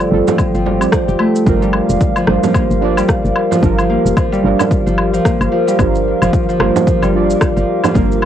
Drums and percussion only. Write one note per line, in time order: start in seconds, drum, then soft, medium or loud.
0.00 shaker soft
0.28 frame drum loud
0.28 shaker medium
0.38 kick loud
0.38 low woodblock medium
0.38 shaker medium
0.55 shaker soft
0.66 frame drum medium
0.81 low woodblock medium
0.81 shaker medium
0.92 kick medium
0.92 cross-stick loud
0.92 shaker medium
1.09 shaker soft
1.19 low woodblock medium
1.36 shaker medium
1.47 kick loud
1.47 shaker soft
1.63 shaker soft
1.73 low woodblock medium
1.90 shaker medium
2.01 kick loud
2.01 shaker medium
2.16 low woodblock medium
2.16 shaker soft
2.27 cross-stick medium
2.44 frame drum medium
2.44 shaker medium
2.55 kick loud
2.55 low woodblock medium
2.55 shaker medium
2.71 shaker soft
2.97 low woodblock medium
2.97 shaker medium
3.09 kick medium
3.09 cross-stick medium
3.09 shaker medium
3.25 shaker soft
3.36 low woodblock medium
3.52 frame drum medium
3.52 shaker medium
3.63 kick loud
3.63 shaker medium
3.79 low woodblock medium
3.79 shaker soft
4.06 shaker medium
4.17 kick loud
4.17 low woodblock medium
4.17 shaker medium
4.33 shaker soft
4.59 frame drum medium
4.59 low woodblock medium
4.59 shaker medium
4.71 kick loud
4.71 shaker medium
4.87 shaker soft
4.98 low woodblock medium
5.14 shaker medium
5.25 kick loud
5.25 cross-stick medium
5.25 shaker medium
5.41 low woodblock medium
5.41 shaker soft
5.68 shaker medium
5.79 kick loud
5.79 low woodblock medium
5.79 shaker medium
5.95 shaker soft
6.22 low woodblock medium
6.22 shaker medium
6.33 kick loud
6.33 shaker medium
6.49 shaker soft
6.60 cross-stick medium
6.60 low woodblock medium
6.76 frame drum medium
6.76 shaker medium
6.87 kick loud
6.87 shaker medium
7.03 low woodblock medium
7.03 shaker soft
7.30 shaker medium
7.41 kick loud
7.41 cross-stick medium
7.41 low woodblock medium
7.41 shaker medium
7.57 shaker soft
7.84 frame drum loud
7.84 low woodblock medium
7.84 shaker medium
7.95 kick loud
7.95 shaker medium
8.12 shaker soft
8.22 low woodblock medium